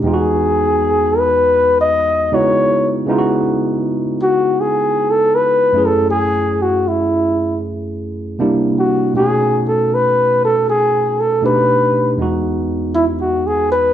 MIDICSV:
0, 0, Header, 1, 3, 480
1, 0, Start_track
1, 0, Key_signature, 4, "minor"
1, 0, Tempo, 759494
1, 21, Time_signature, 4, 2, 24, 8
1, 8807, End_track
2, 0, Start_track
2, 0, Title_t, "Flugelhorn"
2, 0, Program_c, 0, 56
2, 32, Note_on_c, 0, 68, 89
2, 753, Note_on_c, 0, 71, 103
2, 762, Note_off_c, 0, 68, 0
2, 1139, Note_off_c, 0, 71, 0
2, 1143, Note_on_c, 0, 75, 97
2, 1482, Note_on_c, 0, 73, 96
2, 1491, Note_off_c, 0, 75, 0
2, 1864, Note_off_c, 0, 73, 0
2, 2672, Note_on_c, 0, 66, 89
2, 2912, Note_on_c, 0, 68, 91
2, 2921, Note_off_c, 0, 66, 0
2, 3228, Note_on_c, 0, 69, 93
2, 3237, Note_off_c, 0, 68, 0
2, 3382, Note_on_c, 0, 71, 103
2, 3392, Note_off_c, 0, 69, 0
2, 3702, Note_on_c, 0, 69, 87
2, 3712, Note_off_c, 0, 71, 0
2, 3855, Note_off_c, 0, 69, 0
2, 3859, Note_on_c, 0, 68, 100
2, 4186, Note_on_c, 0, 66, 82
2, 4195, Note_off_c, 0, 68, 0
2, 4348, Note_on_c, 0, 64, 74
2, 4358, Note_off_c, 0, 66, 0
2, 4825, Note_off_c, 0, 64, 0
2, 5555, Note_on_c, 0, 66, 82
2, 5772, Note_off_c, 0, 66, 0
2, 5796, Note_on_c, 0, 68, 97
2, 6087, Note_off_c, 0, 68, 0
2, 6119, Note_on_c, 0, 69, 85
2, 6285, Note_on_c, 0, 71, 100
2, 6294, Note_off_c, 0, 69, 0
2, 6593, Note_off_c, 0, 71, 0
2, 6604, Note_on_c, 0, 69, 96
2, 6742, Note_off_c, 0, 69, 0
2, 6761, Note_on_c, 0, 68, 94
2, 7081, Note_on_c, 0, 69, 88
2, 7090, Note_off_c, 0, 68, 0
2, 7231, Note_off_c, 0, 69, 0
2, 7243, Note_on_c, 0, 71, 96
2, 7687, Note_off_c, 0, 71, 0
2, 8183, Note_on_c, 0, 64, 72
2, 8255, Note_off_c, 0, 64, 0
2, 8350, Note_on_c, 0, 66, 76
2, 8512, Note_on_c, 0, 68, 89
2, 8521, Note_off_c, 0, 66, 0
2, 8666, Note_off_c, 0, 68, 0
2, 8671, Note_on_c, 0, 71, 90
2, 8807, Note_off_c, 0, 71, 0
2, 8807, End_track
3, 0, Start_track
3, 0, Title_t, "Tine electric piano"
3, 0, Program_c, 1, 4
3, 0, Control_c, 1, 64, 127
3, 15, Note_on_c, 1, 40, 64
3, 22, Note_on_c, 1, 56, 58
3, 29, Control_c, 1, 64, 0
3, 29, Note_on_c, 1, 59, 55
3, 40, Note_on_c, 1, 63, 53
3, 45, Note_on_c, 1, 65, 54
3, 85, Note_off_c, 1, 65, 0
3, 86, Note_on_c, 1, 66, 70
3, 140, Control_c, 1, 64, 127
3, 1433, Note_off_c, 1, 40, 0
3, 1436, Note_off_c, 1, 56, 0
3, 1440, Note_off_c, 1, 59, 0
3, 1445, Note_off_c, 1, 63, 0
3, 1465, Note_on_c, 1, 56, 54
3, 1466, Note_on_c, 1, 49, 54
3, 1468, Note_off_c, 1, 66, 0
3, 1468, Control_c, 1, 64, 0
3, 1470, Note_on_c, 1, 59, 53
3, 1472, Note_on_c, 1, 63, 57
3, 1478, Note_on_c, 1, 64, 50
3, 1481, Note_on_c, 1, 66, 68
3, 1576, Control_c, 1, 64, 127
3, 1927, Note_off_c, 1, 49, 0
3, 1934, Note_on_c, 1, 49, 69
3, 1935, Note_off_c, 1, 56, 0
3, 1941, Note_off_c, 1, 59, 0
3, 1943, Note_on_c, 1, 56, 58
3, 1947, Note_off_c, 1, 63, 0
3, 1948, Control_c, 1, 64, 0
3, 1949, Note_off_c, 1, 64, 0
3, 1949, Note_on_c, 1, 59, 62
3, 1951, Note_off_c, 1, 66, 0
3, 1956, Note_on_c, 1, 63, 68
3, 1963, Note_on_c, 1, 64, 58
3, 1966, Note_on_c, 1, 65, 61
3, 2006, Note_off_c, 1, 65, 0
3, 2011, Note_on_c, 1, 66, 81
3, 2042, Control_c, 1, 64, 127
3, 3592, Note_off_c, 1, 49, 0
3, 3597, Note_off_c, 1, 56, 0
3, 3600, Note_off_c, 1, 59, 0
3, 3603, Note_off_c, 1, 63, 0
3, 3607, Note_off_c, 1, 64, 0
3, 3618, Note_on_c, 1, 42, 62
3, 3628, Note_on_c, 1, 57, 61
3, 3630, Control_c, 1, 64, 0
3, 3631, Note_off_c, 1, 66, 0
3, 3636, Note_on_c, 1, 61, 56
3, 3642, Note_on_c, 1, 64, 53
3, 3653, Note_on_c, 1, 68, 66
3, 3737, Control_c, 1, 64, 127
3, 5274, Note_off_c, 1, 42, 0
3, 5279, Note_off_c, 1, 57, 0
3, 5283, Note_off_c, 1, 61, 0
3, 5286, Note_off_c, 1, 64, 0
3, 5292, Note_off_c, 1, 68, 0
3, 5303, Note_on_c, 1, 48, 65
3, 5308, Note_on_c, 1, 58, 64
3, 5310, Control_c, 1, 64, 0
3, 5311, Note_on_c, 1, 62, 62
3, 5314, Note_on_c, 1, 64, 63
3, 5320, Note_on_c, 1, 55, 69
3, 5415, Control_c, 1, 64, 127
3, 5776, Note_on_c, 1, 47, 57
3, 5782, Note_off_c, 1, 48, 0
3, 5785, Note_off_c, 1, 58, 0
3, 5785, Note_on_c, 1, 57, 54
3, 5786, Note_off_c, 1, 62, 0
3, 5788, Note_off_c, 1, 64, 0
3, 5790, Note_off_c, 1, 55, 0
3, 5790, Control_c, 1, 64, 0
3, 5792, Note_on_c, 1, 61, 51
3, 5800, Note_on_c, 1, 63, 52
3, 5810, Note_on_c, 1, 66, 65
3, 5891, Control_c, 1, 64, 127
3, 7193, Note_off_c, 1, 47, 0
3, 7198, Note_off_c, 1, 57, 0
3, 7201, Note_off_c, 1, 61, 0
3, 7205, Note_off_c, 1, 63, 0
3, 7210, Note_off_c, 1, 66, 0
3, 7220, Note_on_c, 1, 47, 59
3, 7224, Note_on_c, 1, 57, 51
3, 7228, Note_on_c, 1, 62, 56
3, 7229, Note_on_c, 1, 63, 50
3, 7230, Control_c, 1, 64, 0
3, 7236, Note_on_c, 1, 67, 59
3, 7349, Control_c, 1, 64, 127
3, 7692, Note_on_c, 1, 40, 61
3, 7700, Note_off_c, 1, 47, 0
3, 7701, Note_on_c, 1, 56, 55
3, 7703, Note_off_c, 1, 57, 0
3, 7705, Note_off_c, 1, 62, 0
3, 7705, Note_off_c, 1, 63, 0
3, 7706, Note_on_c, 1, 59, 53
3, 7708, Control_c, 1, 64, 0
3, 7709, Note_off_c, 1, 67, 0
3, 7717, Note_on_c, 1, 63, 54
3, 7723, Note_on_c, 1, 66, 69
3, 7810, Control_c, 1, 64, 127
3, 8807, Note_off_c, 1, 40, 0
3, 8807, Note_off_c, 1, 56, 0
3, 8807, Note_off_c, 1, 59, 0
3, 8807, Note_off_c, 1, 63, 0
3, 8807, Note_off_c, 1, 66, 0
3, 8807, End_track
0, 0, End_of_file